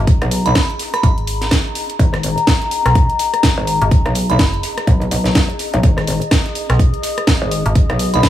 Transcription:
0.00 0.19 G#1 loud
0.00 8.29 G#4 medium
0.00 8.29 D#5 loud
0.00 6.23 A#5 medium
0.07 kick loud
0.07 closed hi-hat medium
0.22 0.54 B1 loud
0.22 cross-stick medium
0.22 closed hi-hat soft
0.31 closed hi-hat medium
0.31 open hi-hat loud
0.46 0.52 B5 medium
0.46 closed hi-hat medium
0.55 0.65 B5 medium
0.55 kick loud
0.55 snare loud
0.55 closed hi-hat medium
0.70 closed hi-hat soft
0.79 snare medium
0.79 closed hi-hat medium
0.79 open hi-hat loud
0.94 1.00 B5 medium
0.94 cross-stick medium
0.94 snare soft
0.94 closed hi-hat medium
1.03 1.50 G#1 medium
1.03 1.13 B5 medium
1.03 kick loud
1.03 closed hi-hat medium
1.18 closed hi-hat soft
1.27 closed hi-hat medium
1.27 open hi-hat loud
1.42 snare soft
1.42 closed hi-hat medium
1.51 kick loud
1.51 snare loud
1.51 closed hi-hat medium
1.51 closed hi-hat loud
1.75 snare soft
1.75 closed hi-hat medium
1.75 open hi-hat loud
1.90 closed hi-hat medium
1.99 2.35 G#1 loud
1.99 kick loud
1.99 closed hi-hat medium
1.99 closed hi-hat loud
2.14 cross-stick medium
2.14 snare soft
2.14 closed hi-hat soft
2.23 closed hi-hat medium
2.23 open hi-hat loud
2.37 closed hi-hat soft
2.37 closed hi-hat medium
2.47 kick loud
2.47 snare loud
2.47 closed hi-hat medium
2.62 snare soft
2.62 closed hi-hat soft
2.71 closed hi-hat medium
2.71 open hi-hat loud
2.86 3.07 B1 loud
2.86 cross-stick medium
2.86 snare soft
2.86 closed hi-hat medium
2.95 kick loud
2.95 closed hi-hat medium
3.10 closed hi-hat soft
3.19 snare medium
3.19 closed hi-hat medium
3.19 open hi-hat loud
3.34 cross-stick medium
3.34 closed hi-hat medium
3.43 kick loud
3.43 snare loud
3.43 closed hi-hat medium
3.43 closed hi-hat loud
3.58 3.79 G#1 loud
3.67 closed hi-hat medium
3.67 open hi-hat loud
3.82 4.03 G#1 loud
3.82 closed hi-hat medium
3.91 kick loud
3.91 closed hi-hat medium
4.06 4.38 B1 loud
4.06 cross-stick medium
4.06 closed hi-hat soft
4.15 closed hi-hat medium
4.15 open hi-hat loud
4.30 4.36 B5 medium
4.30 closed hi-hat soft
4.39 4.62 F#1 loud
4.39 4.49 B5 medium
4.39 kick loud
4.39 snare loud
4.39 closed hi-hat medium
4.54 closed hi-hat soft
4.63 snare medium
4.63 closed hi-hat medium
4.63 open hi-hat loud
4.77 cross-stick medium
4.77 snare soft
4.77 closed hi-hat soft
4.87 5.10 B1 loud
4.87 kick loud
4.87 closed hi-hat medium
5.02 closed hi-hat soft
5.11 5.47 B1 medium
5.11 closed hi-hat medium
5.11 open hi-hat loud
5.25 snare soft
5.25 closed hi-hat medium
5.35 kick loud
5.35 snare loud
5.35 closed hi-hat medium
5.50 closed hi-hat soft
5.59 snare soft
5.59 closed hi-hat medium
5.59 open hi-hat loud
5.74 5.82 B1 loud
5.74 closed hi-hat soft
5.83 6.19 G#1 loud
5.83 kick loud
5.83 closed hi-hat medium
5.83 closed hi-hat loud
5.98 cross-stick medium
5.98 snare soft
5.98 closed hi-hat soft
6.07 closed hi-hat medium
6.07 open hi-hat loud
6.20 8.29 D#6 medium
6.20 closed hi-hat soft
6.20 closed hi-hat medium
6.31 kick loud
6.31 snare loud
6.31 closed hi-hat medium
6.46 snare medium
6.46 closed hi-hat soft
6.55 closed hi-hat medium
6.55 open hi-hat loud
6.69 6.91 B1 loud
6.69 cross-stick medium
6.69 snare medium
6.69 closed hi-hat soft
6.79 kick loud
6.79 closed hi-hat medium
6.94 closed hi-hat soft
7.02 snare medium
7.02 closed hi-hat medium
7.02 open hi-hat loud
7.18 cross-stick medium
7.18 closed hi-hat soft
7.27 kick loud
7.27 snare loud
7.27 closed hi-hat medium
7.42 7.63 G#1 medium
7.51 closed hi-hat medium
7.51 open hi-hat loud
7.66 7.87 G#1 loud
7.66 closed hi-hat medium
7.75 kick loud
7.75 closed hi-hat medium
7.90 8.22 B1 loud
7.90 cross-stick medium
7.90 closed hi-hat soft
7.99 closed hi-hat medium
7.99 open hi-hat loud
8.14 8.20 B5 medium
8.14 closed hi-hat medium
8.23 8.29 B5 medium
8.23 kick loud
8.23 snare loud
8.23 closed hi-hat medium

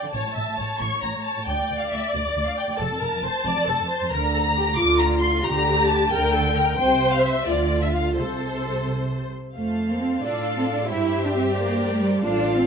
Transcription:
0.00 0.08 D3 soft
0.00 0.14 G5 medium
0.12 0.18 A1 medium
0.12 0.19 A2 medium
0.12 0.36 C#5 medium
0.12 0.79 A5 medium
0.26 0.30 A2 soft
0.36 0.41 A1 soft
0.36 0.41 A2 soft
0.36 0.58 E5 soft
0.48 0.52 A2 medium
0.58 0.63 A1 soft
0.58 0.64 A2 soft
0.58 1.46 C#5 medium
0.80 0.85 A1 medium
0.80 0.85 A2 medium
0.80 1.03 C#6 medium
0.92 0.97 A2 soft
1.02 1.07 A1 soft
1.02 1.08 A2 soft
1.02 1.10 A#5 medium
1.02 1.25 A#5 medium
1.15 1.19 A2 medium
1.24 1.47 A5 medium
1.24 1.48 A5 medium
1.37 1.42 A2 soft
1.46 1.52 D2 medium
1.46 2.79 D5 medium
1.46 1.80 G5 medium
1.46 1.81 G5 medium
1.60 1.64 D2 soft
1.70 1.74 D2 soft
1.70 1.75 D2 soft
1.81 1.86 D2 medium
1.81 1.92 F5 soft
1.91 1.97 D2 soft
1.91 2.13 E5 medium
1.91 2.14 E5 medium
2.13 2.18 D2 medium
2.13 2.19 D2 medium
2.13 2.46 D5 medium
2.26 2.30 D2 soft
2.36 2.40 D2 soft
2.36 2.41 D2 soft
2.46 2.51 D2 medium
2.46 2.58 F5 medium
2.46 2.52 F5 medium
2.58 2.80 G5 medium
2.58 2.66 G5 medium
2.68 2.73 D2 soft
2.79 2.84 F1 medium
2.79 2.84 F2 medium
2.79 3.01 A4 medium
2.79 4.09 A5 medium
2.79 4.12 A5 medium
2.91 2.95 F2 soft
3.01 3.06 F1 soft
3.01 3.06 F2 soft
3.01 3.23 A#4 medium
3.12 3.17 F2 medium
3.23 3.27 F1 soft
3.23 3.27 F2 soft
3.23 3.46 C5 medium
3.45 3.50 F1 medium
3.45 3.50 F2 medium
3.45 3.68 D5 medium
3.57 3.61 F2 soft
3.67 3.72 F1 medium
3.67 3.73 F2 soft
3.67 3.89 A4 medium
3.79 3.84 F2 medium
3.89 4.11 C5 medium
4.01 4.06 F2 soft
4.11 4.70 D2 medium
4.11 4.71 D3 medium
4.11 4.34 A#4 medium
4.11 4.76 A#5 medium
4.11 4.77 A#5 medium
4.34 4.42 A4 medium
4.56 4.78 G4 medium
4.76 5.37 D2 medium
4.76 5.37 D3 medium
4.76 5.43 F4 medium
4.76 4.99 D6 loud
4.76 5.00 D6 medium
4.99 5.07 A#5 medium
4.99 5.22 A#5 medium
5.21 5.44 C6 medium
5.21 5.29 C6 medium
5.44 6.04 D2 medium
5.44 6.04 D3 medium
5.44 6.12 G4 medium
5.44 5.88 A#5 medium
5.44 5.90 A#5 medium
5.88 6.11 A5 medium
5.88 6.12 A5 medium
6.12 6.71 D2 medium
6.12 6.72 D3 medium
6.12 6.34 A#4 medium
6.12 6.78 G5 medium
6.12 6.77 G5 medium
6.33 6.56 A4 medium
6.56 6.79 A#4 medium
6.78 7.44 C2 medium
6.78 7.44 C3 medium
6.78 7.46 C5 medium
6.78 7.12 G5 medium
7.12 7.17 F5 medium
7.12 7.25 F5 medium
7.25 7.48 E5 medium
7.25 7.47 E5 medium
7.47 8.16 D2 medium
7.47 8.16 D3 medium
7.47 8.16 F4 medium
7.47 7.82 D5 medium
7.82 7.87 E5 medium
7.82 7.95 E5 medium
7.93 8.16 F5 medium
7.93 8.04 F5 medium
8.16 9.36 C2 medium
8.16 9.36 C3 medium
8.16 9.21 A4 medium
8.16 9.30 C5 medium
8.16 9.32 C5 medium
9.56 10.19 F2 soft
9.56 9.87 A3 medium
9.56 10.19 A4 soft
9.56 10.19 C5 soft
9.56 10.20 F5 soft
9.90 10.01 A#3 medium
10.01 10.23 C4 medium
10.22 10.91 A2 soft
10.22 10.56 D4 medium
10.22 10.90 F4 soft
10.22 10.86 A4 medium
10.22 10.90 D5 soft
10.22 10.90 F5 soft
10.58 10.62 C4 medium
10.68 10.90 D4 medium
10.90 12.24 G2 medium
10.90 11.23 E4 medium
10.90 12.24 G4 medium
10.90 11.57 G4 soft
10.90 12.24 C5 soft
10.90 11.55 E5 soft
11.25 11.35 D4 medium
11.36 11.44 C4 medium
11.57 11.90 A#3 medium
11.57 12.23 A#4 medium
11.57 12.24 D5 medium
11.91 12.01 A3 medium
12.01 12.23 G3 medium
12.23 12.67 A1 medium
12.23 12.57 D4 medium
12.23 12.67 F4 medium
12.23 12.67 A4 medium
12.23 12.67 C5 medium
12.23 12.67 F5 medium
12.57 12.67 C4 medium

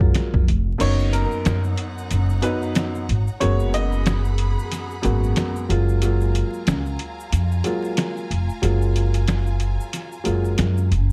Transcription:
0.00 0.42 F#3 medium
0.00 0.43 G#3 medium
0.00 0.43 A#3 medium
0.00 0.43 F4 loud
0.00 kick loud
0.15 snare loud
0.15 snare medium
0.15 closed hi-hat loud
0.34 0.46 F2 medium
0.34 kick loud
0.48 0.76 F1 loud
0.48 closed hi-hat medium
0.78 1.24 F#1 loud
0.78 2.31 F#2 loud
0.78 2.32 A#3 medium
0.78 2.32 B3 medium
0.78 2.32 C#4 medium
0.78 2.33 D#4 loud
0.78 3.39 D#4 medium
0.78 3.39 C#5 medium
0.78 1.10 C#5 loud
0.78 3.39 F#5 medium
0.78 3.39 A#5 medium
0.78 closed hi-hat medium
0.78 crash loud
0.78 shaker medium
0.99 shaker medium
1.13 1.61 A#4 medium
1.13 closed hi-hat medium
1.13 shaker medium
1.31 shaker medium
1.45 1.73 F#2 medium
1.45 snare loud
1.45 snare medium
1.45 closed hi-hat medium
1.45 shaker medium
1.64 shaker soft
1.78 closed hi-hat medium
1.98 shaker medium
2.11 2.39 F#1 loud
2.11 closed hi-hat medium
2.11 shaker medium
2.29 shaker soft
2.42 3.04 F#2 medium
2.42 3.04 F#3 medium
2.42 3.04 B3 medium
2.42 3.04 C#4 medium
2.42 3.05 D#4 loud
2.42 2.73 B4 medium
2.42 closed hi-hat medium
2.42 shaker soft
2.62 shaker soft
2.75 snare loud
2.75 snare medium
2.75 closed hi-hat loud
2.75 shaker medium
2.95 shaker soft
3.09 3.25 G#1 medium
3.09 closed hi-hat medium
3.27 shaker medium
3.40 4.54 F#1 loud
3.40 4.93 F#2 medium
3.40 4.93 G#3 medium
3.40 4.93 A#3 medium
3.40 4.94 B3 medium
3.40 4.94 F#4 loud
3.40 5.67 G#4 medium
3.40 3.70 C#5 medium
3.40 5.67 F#5 medium
3.40 11.12 A#5 medium
3.40 5.67 B5 medium
3.40 closed hi-hat medium
3.40 shaker medium
3.60 shaker medium
3.74 4.22 D#5 medium
3.74 closed hi-hat medium
3.74 shaker medium
3.92 shaker soft
4.06 snare loud
4.06 closed hi-hat medium
4.06 shaker medium
4.25 shaker soft
4.38 closed hi-hat medium
4.59 shaker medium
4.72 snare soft
4.72 closed hi-hat medium
4.72 shaker medium
4.91 shaker soft
5.02 5.32 G#1 medium
5.02 5.64 F#2 medium
5.02 5.64 G#3 medium
5.02 5.65 A#3 medium
5.02 5.65 B3 medium
5.02 5.65 F#4 loud
5.02 closed hi-hat medium
5.02 shaker soft
5.24 shaker soft
5.36 snare loud
5.36 snare medium
5.36 closed hi-hat loud
5.36 shaker medium
5.56 shaker soft
5.69 6.41 F#1 loud
5.69 6.00 F#3 medium
5.69 6.00 G#3 medium
5.69 6.00 A#3 medium
5.69 6.01 F4 loud
5.69 11.12 F4 medium
5.69 11.12 F5 medium
5.69 11.12 G#5 medium
5.69 closed hi-hat medium
5.89 shaker medium
6.02 7.54 F#3 medium
6.02 7.55 G#3 medium
6.02 7.55 A#3 medium
6.02 7.55 F4 loud
6.02 closed hi-hat medium
6.02 shaker medium
6.21 shaker medium
6.35 closed hi-hat medium
6.35 shaker medium
6.53 shaker soft
6.67 6.95 C#2 loud
6.67 snare loud
6.67 closed hi-hat medium
6.67 shaker medium
6.86 shaker soft
6.99 closed hi-hat medium
7.20 shaker medium
7.32 7.60 F2 loud
7.32 closed hi-hat medium
7.32 shaker medium
7.52 shaker soft
7.64 8.25 F#3 medium
7.64 8.26 G#3 medium
7.64 8.26 A#3 medium
7.64 8.27 F4 loud
7.64 closed hi-hat medium
7.64 shaker soft
7.84 shaker soft
7.97 snare loud
7.97 snare medium
7.97 closed hi-hat loud
7.97 shaker medium
8.17 shaker soft
8.31 8.46 F1 medium
8.31 closed hi-hat medium
8.49 shaker medium
8.62 9.76 F#1 loud
8.62 10.15 F#3 medium
8.62 10.15 G#3 medium
8.62 10.15 A#3 medium
8.62 10.16 F4 loud
8.62 closed hi-hat medium
8.62 shaker medium
8.82 shaker medium
8.96 closed hi-hat medium
8.96 shaker medium
9.14 closed hi-hat medium
9.14 shaker soft
9.28 snare loud
9.28 snare medium
9.28 closed hi-hat medium
9.28 shaker medium
9.47 shaker soft
9.60 closed hi-hat medium
9.60 shaker medium
9.81 shaker medium
9.93 snare soft
9.93 closed hi-hat medium
9.93 shaker medium
10.12 shaker medium
10.24 10.54 F#1 medium
10.24 10.86 F#3 medium
10.24 10.86 G#3 medium
10.24 10.86 A#3 medium
10.24 10.87 F4 loud
10.24 closed hi-hat medium
10.24 shaker soft
10.45 shaker soft
10.58 10.93 F#2 loud
10.58 snare loud
10.58 snare medium
10.58 closed hi-hat loud
10.58 shaker medium
10.77 shaker soft
10.91 11.12 F#1 loud
10.91 closed hi-hat medium
10.91 shaker soft

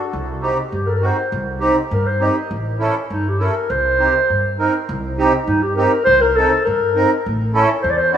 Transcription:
0.00 0.11 F#4 medium
0.13 0.49 C2 loud
0.42 0.57 C4 medium
0.42 0.58 D#4 medium
0.42 0.58 G4 medium
0.71 1.08 G2 medium
0.71 0.88 G4 medium
0.86 0.97 A4 medium
0.86 0.91 A#4 medium
0.95 1.07 A#4 medium
1.01 1.17 C4 medium
1.01 1.17 D#4 medium
1.01 1.17 F#4 medium
1.01 1.33 C5 medium
1.32 1.68 C2 loud
1.60 1.76 C4 medium
1.60 1.76 D#4 medium
1.60 1.76 G4 medium
1.91 2.27 G2 loud
1.91 2.08 A#4 medium
2.06 2.24 C5 medium
2.20 2.35 C4 medium
2.20 2.36 D#4 medium
2.20 2.36 G4 medium
2.20 2.52 D#5 medium
2.51 2.86 A1 loud
2.79 2.95 C#4 medium
2.79 2.95 E4 medium
2.79 2.95 A4 medium
3.10 3.46 G2 loud
3.10 3.30 D#4 medium
3.28 3.40 G4 medium
3.39 3.55 C#4 medium
3.39 3.55 E4 medium
3.39 3.55 A4 medium
3.39 3.72 A#4 medium
3.70 4.05 C2 loud
3.70 4.59 C5 loud
3.99 4.14 C4 medium
3.99 4.14 D#4 medium
3.99 4.14 G4 medium
4.30 4.65 G2 medium
4.58 4.73 C4 medium
4.58 4.74 D#4 medium
4.58 4.74 A#4 medium
4.89 5.24 C2 loud
5.18 5.33 C4 medium
5.18 5.33 D#4 medium
5.18 5.33 G4 loud
5.46 5.83 G2 loud
5.46 5.64 D#4 medium
5.62 5.75 G4 medium
5.76 5.92 C4 medium
5.76 5.92 D#4 medium
5.76 5.92 G4 medium
5.76 6.04 A#4 medium
6.04 6.42 C2 loud
6.04 6.23 C5 loud
6.21 6.38 A#4 loud
6.36 6.52 C4 medium
6.36 6.52 D#4 medium
6.36 6.64 A4 loud
6.36 6.52 A4 medium
6.65 7.02 G2 loud
6.65 7.21 A#4 loud
6.95 7.10 C4 medium
6.95 7.10 D#4 medium
6.95 7.11 A#4 medium
7.26 7.61 A1 loud
7.54 7.69 C#4 medium
7.54 7.69 E4 medium
7.54 7.69 A4 loud
7.83 8.17 E2 medium
7.83 7.92 C5 loud
7.90 7.99 D5 medium
7.97 8.13 C5 loud
8.13 8.17 C#4 medium
8.13 8.17 E4 medium
8.13 8.17 F#4 medium
8.13 8.17 D5 loud

